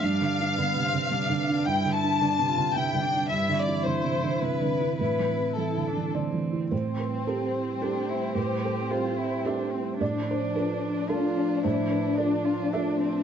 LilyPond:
<<
  \new Staff \with { instrumentName = "Violin section" } { \time 3/4 \key a \minor \tempo 4 = 109 f''2. | g''8 a''4. g''4 | e''8 d''8 c''4 b'4 | b'4 a'4 r4 |
c'2.~ | c'2. | d'2.~ | d'2. | }
  \new Staff \with { instrumentName = "Analog synth pad" } { \time 3/4 \key a \minor << { <g b'>2.~ | <g b'>2. | <e c'>2.~ | <e c'>2. |
<g c''>2.~ | <g c''>2. | <f d''>2.~ | <f d''>2. | } \\ { d'2.~ | d'2.~ | d'2. | e'2. |
e'2.~ | e'2. | d'2.~ | d'2. | } >> }
  \new Staff \with { instrumentName = "Cello" } { \time 3/4 \key a \minor d'4 b8 c'8 d'4 | e'4 d'8 f'8 e'8 d'8 | e'2. | e'4 e'8 d'8 c'4 |
c'2 d'8 e'8 | g'4 f'8 e'8 d'8 c'8 | d'2 f'4 | e'4 d'8 f'8 d'8 c'8 | }
  \new Staff \with { instrumentName = "Felt piano" } { \time 3/4 \key a \minor r2. | r2. | r2. | r2 d''4 |
c''8 b'8 a'4 r4 | b'8 a'8 c''4 e''4 | d''8 c''8 b'4 a'4 | c''8 b'8 d''4 e''4 | }
  \new Staff \with { instrumentName = "Felt piano" } { \clef bass \time 3/4 \key a \minor \tuplet 3/2 { g,8 d8 d'8 d8 c8 d8 c8 d8 d'8 } | \tuplet 3/2 { g,8 d8 d'8 d8 c8 d8 c8 d8 d'8 } | \tuplet 3/2 { g,8 d8 e'8 d8 c8 d8 c8 d8 e'8 } | \tuplet 3/2 { a,8 e8 e'8 e8 d8 e8 d8 e8 e'8 } |
a,4 <c' g'>4 <c' g' a'>4 | a,4 <c' g' a'>4 <c' g' a'>4 | a,4 <d' f' a'>4 <d' f'>4 | a,4 <d' f' a'>4 <d' f' a'>4 | }
>>